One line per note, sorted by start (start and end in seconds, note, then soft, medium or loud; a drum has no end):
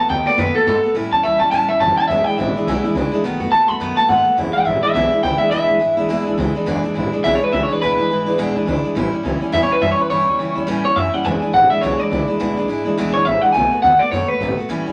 0.09 0.23 D#2 medium
0.09 0.26 D#3 medium
0.09 0.26 A3 medium
0.09 0.26 B3 medium
0.09 0.24 F#4 medium
0.09 0.26 G5 loud
0.26 0.37 A3 soft
0.26 0.38 B3 medium
0.26 0.38 F#4 medium
0.26 0.39 D5 loud
0.26 muted upright bass stroke medium
0.38 0.51 F#2 medium
0.38 0.55 B2 medium
0.38 0.55 D#3 medium
0.38 0.55 A3 medium
0.38 0.55 B3 medium
0.38 0.53 F#4 medium
0.38 0.55 B4 loud
0.54 0.66 A3 soft
0.54 0.67 B3 medium
0.54 0.66 F#4 medium
0.54 0.66 A4 loud
0.66 0.80 G#2 medium
0.66 0.83 D#3 medium
0.66 0.84 A3 medium
0.66 0.84 B3 medium
0.66 0.82 F#4 medium
0.66 0.95 A4 loud
0.83 0.96 A3 soft
0.83 0.96 B3 medium
0.83 0.95 F#4 medium
0.83 muted upright bass stroke medium
0.95 1.08 A1 loud
0.95 1.12 A2 medium
0.95 1.12 E3 medium
0.95 1.12 G3 medium
0.95 1.12 C#4 medium
0.95 1.10 E4 medium
1.11 1.21 E2 loud
1.11 1.23 G3 soft
1.11 1.24 C#4 medium
1.11 1.23 E4 medium
1.11 1.23 A5 loud
1.23 1.37 C#2 medium
1.23 1.40 E3 medium
1.23 1.41 G3 medium
1.23 1.40 C#4 medium
1.23 1.39 E4 medium
1.23 1.40 E5 loud
1.40 1.49 E2 medium
1.40 1.52 G3 soft
1.40 1.52 C#4 soft
1.40 1.52 E4 medium
1.40 1.50 A5 loud
1.51 1.65 E2 medium
1.51 1.69 A2 medium
1.51 1.69 E3 medium
1.51 1.69 G3 medium
1.51 1.69 C#4 loud
1.51 1.68 E4 medium
1.51 1.68 A5 loud
1.69 1.78 E2 medium
1.69 1.80 G3 soft
1.69 1.81 C#4 medium
1.69 1.80 E4 medium
1.69 1.80 E5 medium
1.80 1.93 F#1 medium
1.80 1.97 E3 medium
1.80 1.98 G3 medium
1.80 1.98 C#4 medium
1.80 1.97 E4 medium
1.80 1.96 A5 loud
1.97 2.10 G3 soft
1.97 2.10 C#4 soft
1.97 2.09 E4 medium
1.97 2.07 A5 loud
1.97 muted upright bass stroke medium
2.08 2.22 E1 loud
2.08 2.26 E2 medium
2.08 2.27 B2 medium
2.08 2.27 E3 medium
2.08 2.27 G#3 medium
2.08 2.26 D4 medium
2.08 2.24 E5 loud
2.12 2.25 E4 medium
2.24 2.38 G#3 soft
2.24 2.38 D4 medium
2.24 2.38 E4 medium
2.24 2.37 G5 medium
2.24 muted upright bass stroke medium
2.29 2.36 E3 soft
2.37 2.51 G#1 loud
2.37 2.54 E3 medium
2.37 2.55 G#3 medium
2.37 2.55 D4 medium
2.37 2.54 E4 medium
2.37 2.93 E5 loud
2.55 2.67 E3 medium
2.55 2.67 G#3 medium
2.55 2.67 D4 medium
2.55 2.67 E4 medium
2.55 muted upright bass stroke medium
2.67 2.80 B1 loud
2.67 2.84 E2 medium
2.67 2.84 B2 medium
2.67 2.84 E3 loud
2.67 2.84 G#3 medium
2.67 2.84 D4 medium
2.67 2.83 E4 medium
2.83 2.94 E3 soft
2.83 2.95 G#3 medium
2.83 2.96 D4 soft
2.83 2.95 E4 medium
2.83 muted upright bass stroke medium
2.95 3.08 C#2 loud
2.95 3.12 E3 medium
2.95 3.12 G#3 medium
2.95 3.12 D4 medium
2.95 3.10 E4 medium
3.12 3.24 E3 soft
3.12 3.24 G#3 medium
3.12 3.24 D4 medium
3.12 3.23 E4 medium
3.23 3.37 B1 loud
3.23 3.40 B2 medium
3.23 3.41 D#3 medium
3.23 3.41 A3 medium
3.23 3.41 B3 medium
3.23 3.39 F#4 medium
3.40 3.49 F#2 loud
3.40 3.51 A3 soft
3.40 3.53 B3 medium
3.40 3.52 F#4 medium
3.51 3.65 D#2 loud
3.51 3.68 D#3 medium
3.51 3.69 A3 medium
3.51 3.68 B3 medium
3.51 3.67 F#4 medium
3.51 3.68 A5 loud
3.68 3.78 F#2 loud
3.68 3.80 A3 soft
3.68 3.80 B3 soft
3.68 3.80 F#4 medium
3.68 3.96 B5 loud
3.80 3.93 F#2 loud
3.80 3.97 B2 medium
3.80 3.97 D#3 medium
3.80 3.98 A3 medium
3.80 3.98 B3 loud
3.80 3.96 F#4 medium
3.97 4.06 F#2 medium
3.97 4.09 A3 soft
3.97 4.09 B3 medium
3.97 4.09 F#4 medium
3.97 4.09 A5 loud
4.08 4.22 G#2 medium
4.08 4.26 D#3 medium
4.08 4.26 A3 medium
4.08 4.26 B3 medium
4.08 4.24 F#4 medium
4.08 4.37 F#5 loud
4.25 4.38 A3 soft
4.25 4.38 B3 soft
4.25 4.37 F#4 medium
4.25 muted upright bass stroke medium
4.37 4.51 E1 loud
4.37 4.54 E2 medium
4.37 4.54 B2 medium
4.37 4.55 E3 medium
4.37 4.54 G#3 medium
4.37 4.53 D4 medium
4.37 4.52 E4 medium
4.53 4.64 E3 soft
4.53 4.65 G#3 soft
4.53 4.65 D4 medium
4.53 4.66 E4 medium
4.53 4.66 G5 medium
4.53 muted upright bass stroke medium
4.65 4.79 G#1 medium
4.65 4.83 E3 medium
4.65 4.83 G#3 medium
4.65 4.83 D4 medium
4.65 4.81 E4 medium
4.65 4.82 E5 loud
4.82 4.94 E3 soft
4.82 4.95 G#3 medium
4.82 4.95 D4 medium
4.82 4.95 E4 medium
4.82 4.92 E5 medium
4.82 muted upright bass stroke medium
4.94 5.08 B1 loud
4.94 5.12 E2 medium
4.94 5.12 B2 medium
4.94 5.12 E3 medium
4.94 5.12 G#3 medium
4.94 5.12 D4 medium
4.94 5.11 E4 medium
4.94 5.22 E5 medium
5.12 5.22 E3 soft
5.12 5.23 G#3 soft
5.12 5.24 D4 soft
5.12 5.23 E4 medium
5.23 5.36 C#2 medium
5.23 5.40 E3 medium
5.23 5.41 G#3 medium
5.23 5.40 D4 medium
5.23 5.39 E4 medium
5.23 5.38 G5 medium
5.38 5.51 G#3 medium
5.38 5.51 D4 soft
5.38 5.52 E4 medium
5.38 5.50 E5 loud
5.38 muted upright bass stroke medium
5.43 5.51 E3 soft
5.51 5.65 D2 medium
5.51 5.68 E2 medium
5.51 5.69 B2 medium
5.51 5.69 E3 medium
5.51 5.69 G#3 medium
5.51 5.68 D4 medium
5.51 5.67 E4 medium
5.51 6.35 E5 loud
5.68 5.78 B1 loud
5.68 5.78 E3 soft
5.68 5.79 G#3 medium
5.68 5.80 D4 soft
5.68 5.80 E4 medium
5.79 5.94 G#1 medium
5.79 5.97 E3 medium
5.79 5.97 G#3 medium
5.79 5.97 D4 medium
5.79 5.96 E4 medium
5.97 6.07 B1 medium
5.97 6.09 E3 medium
5.97 6.09 G#3 medium
5.97 6.09 D4 medium
5.97 6.09 E4 medium
6.09 6.23 B1 medium
6.09 6.26 E2 medium
6.09 6.26 B2 medium
6.09 6.27 E3 medium
6.09 6.27 G#3 medium
6.09 6.26 D4 medium
6.09 6.25 E4 loud
6.26 6.35 B1 medium
6.26 6.36 E3 soft
6.26 6.37 G#3 medium
6.26 6.38 D4 medium
6.26 6.38 E4 medium
6.38 6.51 C#2 loud
6.38 6.55 E3 medium
6.38 6.55 G#3 medium
6.38 6.55 D4 medium
6.38 6.54 E4 medium
6.55 6.66 E3 medium
6.55 6.66 G#3 medium
6.55 6.67 D4 medium
6.55 6.67 E4 medium
6.55 muted upright bass stroke medium
6.66 6.80 E1 medium
6.66 6.83 E2 medium
6.66 6.84 B2 medium
6.66 6.84 E3 medium
6.66 6.84 G#3 medium
6.66 6.83 D4 medium
6.66 6.82 E4 medium
6.83 6.93 E3 medium
6.83 6.94 G#3 medium
6.83 6.95 D4 medium
6.83 6.95 E4 medium
6.83 muted upright bass stroke medium
6.94 7.09 G#1 medium
6.94 7.12 E3 medium
6.94 7.12 G#3 medium
6.94 7.12 D4 medium
6.94 7.11 E4 medium
7.12 7.23 E3 medium
7.12 7.24 G#3 medium
7.12 7.24 D4 medium
7.12 7.24 E4 medium
7.12 muted upright bass stroke medium
7.24 7.38 B1 medium
7.24 7.41 E2 medium
7.24 7.41 B2 medium
7.24 7.41 E3 medium
7.24 7.41 G#3 loud
7.24 7.40 D4 medium
7.24 7.39 E4 medium
7.24 7.33 E5 loud
7.35 7.43 C#5 medium
7.40 7.51 E3 soft
7.40 7.52 G#3 soft
7.40 7.53 D4 medium
7.40 7.52 E4 soft
7.40 7.53 B4 medium
7.52 7.66 C#2 medium
7.52 7.69 E3 medium
7.52 7.70 G#3 medium
7.52 7.69 D4 medium
7.52 7.68 E4 medium
7.52 7.63 E5 medium
7.63 7.73 C#5 medium
7.69 7.81 E3 soft
7.69 7.82 G#3 soft
7.69 7.82 D4 medium
7.69 7.81 E4 medium
7.69 7.80 B4 loud
7.69 muted upright bass stroke medium
7.82 7.95 D2 loud
7.82 7.98 E2 medium
7.82 7.99 B2 medium
7.82 7.99 E3 medium
7.82 7.99 G#3 medium
7.82 7.98 D4 medium
7.82 7.97 E4 medium
7.82 8.37 B4 loud
7.98 8.07 B1 medium
7.98 8.09 E3 soft
7.98 8.10 G#3 medium
7.98 8.10 D4 medium
7.98 8.10 E4 medium
8.10 8.23 G#1 medium
8.10 8.27 E3 medium
8.10 8.27 G#3 medium
8.10 8.26 D4 medium
8.10 8.25 E4 medium
8.26 8.36 B1 medium
8.26 8.38 E3 medium
8.26 8.38 G#3 medium
8.26 8.38 D4 medium
8.26 8.38 E4 medium
8.38 8.52 B1 medium
8.38 8.55 E2 medium
8.38 8.56 B2 medium
8.38 8.56 E3 medium
8.38 8.56 G#3 loud
8.38 8.55 D4 loud
8.38 8.54 E4 loud
8.55 8.65 B1 medium
8.55 8.65 E3 soft
8.55 8.66 G#3 medium
8.55 8.67 D4 medium
8.55 8.67 E4 medium
8.66 8.80 C#2 medium
8.66 8.83 E3 medium
8.66 8.84 G#3 medium
8.66 8.83 D4 medium
8.66 8.82 E4 medium
8.83 8.95 E3 soft
8.83 8.96 G#3 medium
8.83 8.96 D4 medium
8.83 8.95 E4 medium
8.83 muted upright bass stroke medium
8.95 9.09 A1 loud
8.95 9.12 A2 medium
8.95 9.13 E3 medium
8.95 9.13 G3 medium
8.95 9.12 C#4 medium
8.95 9.11 E4 medium
9.12 9.23 G3 medium
9.12 9.24 C#4 medium
9.12 9.24 E4 medium
9.12 muted upright bass stroke medium
9.23 9.38 C#2 loud
9.23 9.41 E3 medium
9.23 9.42 G3 medium
9.23 9.41 C#4 medium
9.23 9.40 E4 medium
9.41 9.52 G3 medium
9.41 9.53 C#4 medium
9.41 9.53 E4 medium
9.41 muted upright bass stroke medium
9.52 9.66 E2 medium
9.52 9.70 A2 medium
9.52 9.70 E3 medium
9.52 9.70 G3 medium
9.52 9.69 C#4 medium
9.52 9.67 E4 loud
9.52 9.63 E5 loud
9.63 9.72 C#5 medium
9.69 9.81 G3 soft
9.69 9.82 C#4 soft
9.69 9.81 E4 medium
9.69 9.82 B4 medium
9.69 muted upright bass stroke medium
9.81 9.95 F#2 medium
9.81 9.98 E3 medium
9.81 9.99 G3 medium
9.81 9.98 C#4 medium
9.81 9.96 E4 medium
9.81 9.91 E5 loud
9.92 10.01 C#5 medium
9.98 10.10 G3 soft
9.98 10.10 C#4 soft
9.98 10.10 E4 medium
9.98 10.10 B4 loud
10.10 10.24 G2 loud
10.10 10.27 A2 medium
10.10 10.27 E3 medium
10.10 10.28 G3 medium
10.10 10.28 C#4 medium
10.10 10.26 E4 medium
10.10 10.66 C#5 loud
10.27 10.37 E2 medium
10.27 10.39 G3 soft
10.27 10.40 C#4 soft
10.27 10.39 E4 medium
10.39 10.52 C#2 loud
10.39 10.56 E3 medium
10.39 10.57 G3 medium
10.39 10.56 C#4 medium
10.39 10.54 E4 medium
10.55 10.65 E2 loud
10.55 10.67 G3 medium
10.55 10.67 C#4 medium
10.55 10.67 E4 medium
10.67 10.81 E2 loud
10.67 10.84 A2 loud
10.67 10.85 E3 loud
10.67 10.85 G3 loud
10.67 10.84 C#4 loud
10.67 10.83 E4 medium
10.84 10.94 E2 medium
10.84 10.96 G3 soft
10.84 10.97 C#4 medium
10.84 10.96 E4 medium
10.84 10.96 C#5 loud
10.96 11.09 F#2 medium
10.96 11.13 E3 medium
10.96 11.13 G3 medium
10.96 11.12 C#4 medium
10.96 11.11 E4 medium
10.96 11.14 E5 loud
11.12 11.25 G3 soft
11.12 11.25 C#4 medium
11.12 11.24 E4 medium
11.12 11.25 F#5 loud
11.12 muted upright bass stroke medium
11.24 11.38 E1 loud
11.24 11.41 E2 medium
11.24 11.42 B2 medium
11.24 11.42 E3 medium
11.24 11.42 G#3 medium
11.24 11.41 D4 medium
11.24 11.40 E4 medium
11.24 11.53 G#5 loud
11.41 11.52 E3 soft
11.41 11.53 G#3 medium
11.41 11.54 D4 medium
11.41 11.53 E4 medium
11.41 muted upright bass stroke medium
11.53 11.67 G#1 medium
11.53 11.70 E3 medium
11.53 11.71 G#3 medium
11.53 11.70 D4 medium
11.53 11.69 E4 medium
11.53 11.70 F#5 loud
11.70 11.82 E3 medium
11.70 11.82 G#3 medium
11.70 11.83 D4 medium
11.70 11.82 E4 medium
11.70 11.82 E5 medium
11.70 muted upright bass stroke medium
11.81 11.96 B1 medium
11.81 11.99 E2 medium
11.81 11.99 B2 medium
11.81 12.00 E3 medium
11.81 11.99 G#3 loud
11.81 11.99 D4 medium
11.81 11.97 E4 loud
11.81 12.00 C#5 loud
11.99 12.09 E3 soft
11.99 12.10 G#3 soft
11.99 12.11 D4 soft
11.99 12.11 E4 medium
11.99 12.27 D5 loud
12.11 12.25 C#2 loud
12.11 12.28 E3 medium
12.11 12.28 G#3 medium
12.11 12.27 D4 medium
12.11 12.26 E4 medium
12.27 12.39 E3 soft
12.27 12.39 G#3 soft
12.27 12.40 D4 medium
12.27 12.39 E4 medium
12.27 muted upright bass stroke medium
12.39 12.54 D2 loud
12.39 12.57 E2 medium
12.39 12.57 B2 medium
12.39 12.57 E3 medium
12.39 12.57 G#3 medium
12.39 12.56 D4 medium
12.39 12.55 E4 medium
12.56 12.66 B1 medium
12.56 12.67 E3 medium
12.56 12.68 G#3 medium
12.56 12.69 D4 medium
12.56 12.68 E4 medium
12.68 12.81 G#1 loud
12.68 12.85 E3 medium
12.68 12.85 G#3 medium
12.68 12.85 D4 medium
12.68 12.83 E4 medium
12.85 12.95 B1 medium
12.85 12.97 E3 medium
12.85 12.97 G#3 medium
12.85 12.97 D4 medium
12.85 12.97 E4 medium
12.97 13.11 B1 loud
12.97 13.14 E2 loud
12.97 13.15 B2 medium
12.97 13.15 E3 loud
12.97 13.14 G#3 loud
12.97 13.14 D4 loud
12.97 13.12 E4 loud
13.14 13.24 B1 medium
13.14 13.24 E3 soft
13.14 13.25 G#3 soft
13.14 13.26 D4 medium
13.14 13.26 E4 medium
13.14 13.25 C#5 loud
13.25 13.39 A1 medium
13.25 13.43 E3 medium
13.25 13.43 G#3 medium
13.25 13.42 D4 medium
13.25 13.41 E4 medium
13.25 13.41 E5 loud
13.41 13.54 E3 soft
13.41 13.54 G#3 soft
13.41 13.55 D4 medium
13.41 13.54 E4 soft
13.41 13.52 F#5 medium
13.41 muted upright bass stroke medium
13.53 13.68 B1 loud
13.53 13.71 B2 medium
13.53 13.71 D#3 medium
13.53 13.72 A3 medium
13.53 13.72 B3 medium
13.53 13.70 F#4 medium
13.53 13.81 G#5 loud
13.72 13.83 A3 soft
13.72 13.84 B3 medium
13.72 13.83 F#4 medium
13.72 muted upright bass stroke medium
13.82 13.97 D#2 loud
13.82 14.00 D#3 medium
13.82 14.01 A3 medium
13.82 14.00 B3 medium
13.82 13.99 F#4 medium
13.82 13.99 F#5 loud
13.99 14.12 A3 soft
13.99 14.13 B3 medium
13.99 14.12 F#4 medium
13.99 14.11 D5 loud
13.99 muted upright bass stroke medium
14.11 14.25 F#2 medium
14.11 14.29 B2 medium
14.11 14.29 D#3 medium
14.11 14.30 A3 medium
14.11 14.30 B3 medium
14.11 14.28 F#4 medium
14.11 14.28 C#5 loud
14.28 14.40 A3 soft
14.28 14.41 B3 soft
14.28 14.41 F#4 soft
14.28 14.56 B4 medium
14.28 muted upright bass stroke medium
14.40 14.54 G#1 loud
14.40 14.57 D#3 medium
14.40 14.58 A3 medium
14.40 14.58 B3 medium
14.40 14.56 F#4 medium
14.57 14.69 A3 soft
14.57 14.70 B3 soft
14.57 14.69 F#4 medium
14.57 muted upright bass stroke medium
14.69 14.82 A1 loud
14.69 14.86 A2 medium
14.69 14.86 E3 medium
14.69 14.86 G3 loud
14.69 14.86 C#4 medium
14.69 14.85 E4 loud
14.86 14.92 E2 medium
14.86 14.92 G3 medium
14.86 14.92 C#4 medium
14.86 14.92 E4 medium